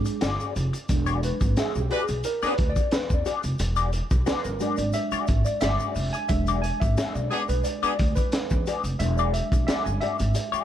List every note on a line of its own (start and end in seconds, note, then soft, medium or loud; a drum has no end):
0.00 0.18 F#3 medium
0.00 0.19 G#3 soft
0.00 0.19 D4 medium
0.00 0.74 G#4 medium
0.05 muted clean electric guitar stroke soft
0.05 closed hi-hat medium
0.05 shaker medium
0.21 0.36 G1 loud
0.21 0.53 F#4 medium
0.21 0.53 G#4 medium
0.21 0.54 D5 medium
0.21 snare loud
0.21 closed hi-hat loud
0.21 shaker medium
0.40 closed hi-hat soft
0.40 shaker medium
0.55 0.70 F1 medium
0.55 muted clean electric guitar stroke soft
0.55 closed hi-hat medium
0.55 shaker medium
0.73 muted clean electric guitar stroke soft
0.73 closed hi-hat medium
0.73 shaker medium
0.89 1.29 E1 loud
0.89 1.86 F#3 medium
0.89 1.87 G#3 medium
0.89 1.87 D4 medium
0.89 muted clean electric guitar stroke soft
0.89 kick loud
0.89 closed hi-hat medium
0.89 shaker medium
1.06 1.21 F#4 medium
1.06 1.22 G#4 medium
1.06 1.22 D5 medium
1.06 closed hi-hat soft
1.06 shaker medium
1.22 1.59 B4 medium
1.22 muted clean electric guitar stroke soft
1.22 closed hi-hat medium
1.22 shaker medium
1.41 1.53 G#1 medium
1.41 muted clean electric guitar stroke soft
1.41 kick loud
1.41 closed hi-hat soft
1.41 shaker medium
1.57 1.78 F#4 medium
1.57 1.81 G#4 medium
1.57 1.75 G#4 medium
1.57 1.75 E5 medium
1.57 muted upright bass stroke medium
1.57 snare loud
1.57 closed hi-hat medium
1.57 shaker medium
1.75 1.87 B1 medium
1.75 muted clean electric guitar stroke soft
1.75 shaker medium
1.80 2.01 G4 medium
1.90 2.02 F#4 medium
1.90 2.07 F#4 medium
1.90 2.02 G#4 medium
1.90 2.08 G#4 medium
1.90 2.02 B4 loud
1.90 2.07 D5 medium
1.90 closed hi-hat medium
2.03 2.23 G#4 medium
2.08 2.21 B1 medium
2.08 muted clean electric guitar stroke soft
2.08 closed hi-hat medium
2.08 shaker medium
2.24 2.46 A#4 loud
2.24 muted clean electric guitar stroke soft
2.24 closed hi-hat medium
2.24 shaker medium
2.42 2.53 B3 medium
2.42 2.53 D4 medium
2.42 2.57 F#4 medium
2.42 2.53 G#4 medium
2.42 2.57 G#4 medium
2.42 2.58 D5 medium
2.42 muted upright bass stroke soft
2.42 snare soft
2.42 shaker medium
2.47 2.70 B4 loud
2.58 2.72 D2 medium
2.58 muted clean electric guitar stroke soft
2.58 kick medium
2.58 closed hi-hat medium
2.69 2.93 D5 loud
2.76 muted clean electric guitar stroke soft
2.76 kick medium
2.76 closed hi-hat medium
2.76 shaker medium
2.91 3.13 B4 medium
2.91 muted clean electric guitar stroke soft
2.91 snare loud
2.91 closed hi-hat medium
2.91 shaker medium
3.10 3.22 E2 medium
3.10 kick medium
3.10 shaker soft
3.14 3.29 D5 loud
3.25 3.43 F#4 medium
3.25 3.43 G#4 medium
3.25 3.42 D5 medium
3.25 closed hi-hat medium
3.25 shaker medium
3.43 3.56 F1 medium
3.43 muted clean electric guitar stroke medium
3.43 closed hi-hat medium
3.43 shaker medium
3.59 3.99 E1 loud
3.59 muted clean electric guitar stroke soft
3.59 closed hi-hat loud
3.59 shaker medium
3.76 3.91 F#4 medium
3.76 3.92 G#4 medium
3.76 3.92 D5 medium
3.76 closed hi-hat soft
3.76 shaker medium
3.93 muted clean electric guitar stroke soft
3.93 closed hi-hat medium
3.93 shaker medium
4.11 4.23 B1 medium
4.11 muted clean electric guitar stroke soft
4.11 kick loud
4.11 closed hi-hat medium
4.11 shaker medium
4.26 4.48 F#4 loud
4.26 4.44 G#4 loud
4.26 4.45 B4 medium
4.26 4.43 D5 loud
4.26 muted upright bass stroke medium
4.26 snare loud
4.26 closed hi-hat medium
4.26 shaker medium
4.44 4.57 G1 medium
4.44 4.79 A#4 medium
4.44 muted clean electric guitar stroke soft
4.44 closed hi-hat soft
4.44 shaker medium
4.60 6.28 F#3 medium
4.60 6.29 G#3 medium
4.60 6.29 D4 medium
4.60 4.77 F#4 medium
4.60 4.78 G#4 medium
4.60 4.77 D5 medium
4.60 closed hi-hat medium
4.60 shaker medium
4.77 4.91 G#1 medium
4.77 4.95 D5 medium
4.77 muted clean electric guitar stroke soft
4.77 closed hi-hat medium
4.77 shaker medium
4.93 5.47 E5 loud
4.93 muted clean electric guitar stroke soft
4.93 closed hi-hat medium
4.93 shaker medium
5.12 5.27 F#4 medium
5.12 5.28 G#4 medium
5.12 5.28 D5 medium
5.12 muted upright bass stroke medium
5.12 closed hi-hat soft
5.12 shaker medium
5.27 5.42 G#1 medium
5.27 muted clean electric guitar stroke soft
5.27 kick loud
5.27 closed hi-hat medium
5.27 shaker medium
5.45 5.62 D5 loud
5.45 muted clean electric guitar stroke soft
5.45 closed hi-hat medium
5.45 shaker medium
5.61 5.76 G1 loud
5.61 5.94 F#4 medium
5.61 5.94 G#4 medium
5.61 5.94 D5 medium
5.61 6.15 E5 loud
5.61 snare loud
5.61 closed hi-hat loud
5.61 shaker medium
5.79 shaker medium
5.95 6.09 F1 medium
5.95 muted clean electric guitar stroke soft
5.95 open hi-hat medium
5.95 shaker medium
6.13 6.28 G#5 loud
6.13 muted clean electric guitar stroke soft
6.13 closed hi-hat medium
6.13 shaker medium
6.29 6.69 E1 loud
6.29 6.60 F#3 medium
6.29 8.96 G#3 medium
6.29 8.96 D4 medium
6.29 6.64 E5 loud
6.29 muted clean electric guitar stroke soft
6.29 kick loud
6.29 closed hi-hat loud
6.29 shaker medium
6.47 6.63 F#4 medium
6.47 6.64 G#4 medium
6.47 6.64 D5 medium
6.47 closed hi-hat soft
6.47 shaker medium
6.62 6.79 G#5 loud
6.62 muted clean electric guitar stroke medium
6.62 closed hi-hat medium
6.62 shaker medium
6.80 6.94 G#1 loud
6.80 7.16 E5 medium
6.80 muted clean electric guitar stroke soft
6.80 kick loud
6.80 closed hi-hat soft
6.80 shaker medium
6.97 7.18 F#4 medium
6.97 7.15 G#4 loud
6.97 7.15 E5 medium
6.97 muted upright bass stroke medium
6.97 snare loud
6.97 closed hi-hat medium
6.97 shaker medium
7.14 7.27 B1 medium
7.14 7.49 D5 medium
7.14 muted clean electric guitar stroke soft
7.14 shaker medium
7.30 7.42 B3 medium
7.30 7.42 D4 loud
7.30 7.48 F#4 medium
7.30 7.42 G#4 loud
7.30 7.49 G#4 medium
7.30 7.48 D5 medium
7.30 closed hi-hat medium
7.49 7.61 B1 medium
7.49 7.65 B4 medium
7.49 muted clean electric guitar stroke soft
7.49 closed hi-hat medium
7.49 shaker medium
7.64 8.18 D5 loud
7.64 muted clean electric guitar stroke soft
7.64 closed hi-hat medium
7.64 shaker medium
7.82 7.92 B3 medium
7.82 7.93 D4 medium
7.82 7.98 F#4 medium
7.82 7.93 G#4 loud
7.82 7.98 G#4 medium
7.82 7.99 D5 medium
7.82 muted upright bass stroke medium
7.82 closed hi-hat soft
7.82 shaker medium
7.99 8.13 D2 medium
7.99 muted clean electric guitar stroke medium
7.99 kick loud
7.99 closed hi-hat medium
8.16 8.80 B4 loud
8.16 muted clean electric guitar stroke soft
8.16 kick medium
8.16 closed hi-hat medium
8.16 shaker medium
8.32 muted clean electric guitar stroke soft
8.32 snare loud
8.32 closed hi-hat loud
8.32 shaker medium
8.50 8.63 E2 loud
8.50 kick medium
8.50 shaker medium
8.66 8.83 F#4 medium
8.66 8.84 G#4 medium
8.66 8.84 D5 medium
8.66 closed hi-hat medium
8.66 shaker medium
8.84 8.96 F1 medium
8.84 closed hi-hat medium
8.84 shaker medium
8.99 9.39 E1 medium
8.99 10.64 F#3 medium
8.99 10.64 G#3 medium
8.99 10.64 D4 medium
8.99 9.18 E5 loud
8.99 muted clean electric guitar stroke soft
8.99 closed hi-hat medium
8.99 shaker medium
9.17 9.34 F#4 medium
9.17 9.34 G#4 medium
9.17 9.34 D5 medium
9.17 9.35 D5 medium
9.17 shaker medium
9.33 9.65 E5 medium
9.33 muted clean electric guitar stroke soft
9.33 closed hi-hat medium
9.33 shaker medium
9.52 9.64 B1 medium
9.52 muted clean electric guitar stroke soft
9.52 kick loud
9.52 closed hi-hat soft
9.52 shaker medium
9.67 9.89 F#4 medium
9.67 9.85 G#4 medium
9.67 9.84 D5 medium
9.67 9.84 E5 loud
9.67 muted upright bass stroke medium
9.67 snare loud
9.67 closed hi-hat medium
9.67 shaker medium
9.85 9.98 G1 medium
9.85 10.00 G#5 medium
9.85 muted clean electric guitar stroke medium
9.85 shaker medium
10.01 10.18 F#4 medium
10.01 10.18 G#4 medium
10.01 10.18 D5 medium
10.01 10.64 E5 medium
10.01 closed hi-hat medium
10.19 10.32 G#1 medium
10.19 muted clean electric guitar stroke soft
10.19 closed hi-hat medium
10.19 shaker medium
10.34 muted clean electric guitar stroke soft
10.34 closed hi-hat medium
10.34 shaker medium
10.52 10.64 F#4 medium
10.52 10.64 G#4 loud
10.52 10.64 D5 loud
10.52 muted upright bass stroke soft
10.52 shaker medium